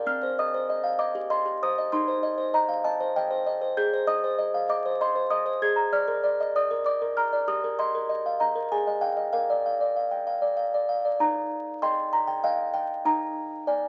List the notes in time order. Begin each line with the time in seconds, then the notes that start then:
0.06 C4 F6
0.23 C5
0.39 D#5 D#6
0.54 C5
0.69 D#5
0.84 F5
0.99 D#5 D6
1.15 G4
1.30 D#5 C6
1.45 G4
1.63 C5 D#6
1.78 D#5
1.92 D#4 C6
2.08 C5
2.23 D#5
2.38 C5
2.54 D#5 A#5
2.69 F5
2.84 D#5 A5
3.00 C5
3.16 D#5 G5
3.31 C5
3.46 D#5
3.61 C5
3.77 G#4 G6
3.93 C5
4.07 D#5 D#6
4.24 C5
4.39 D#5
4.54 F5
4.69 D#5 D6
4.86 C5
5.01 D#5 C6
5.15 C5
5.30 D#5 D#6
5.46 C5
5.62 G#4 G#6
5.76 A#5
5.93 D5 F6
6.08 A#4
6.23 D5
6.40 D#5
6.56 D5 D#6
6.71 A#4
6.86 D5 D6
7.02 A#4
7.17 A#5 F6
7.33 D5
7.48 G4 D#6
7.64 A#4
7.79 D#5 C6
7.95 A#4
8.09 D#5
8.26 F5
8.40 D#5 A#5
8.55 A#4
8.72 G#4 G#5
8.87 D#5
9.01 F5 G5
9.17 D#5
9.33 A#4 F5
9.50 D5
9.66 F5
9.81 D5
9.96 F5
10.11 G5
10.27 F5
10.42 D5
10.57 F5
10.74 D5
10.89 F5
11.05 D5
11.20 D#4 A#5
11.82 D#5 G5 C6
12.13 A#5
12.27 G5
12.44 D#5 F5 G5
12.74 G5
13.05 D#4 A#5
13.67 D5 G#5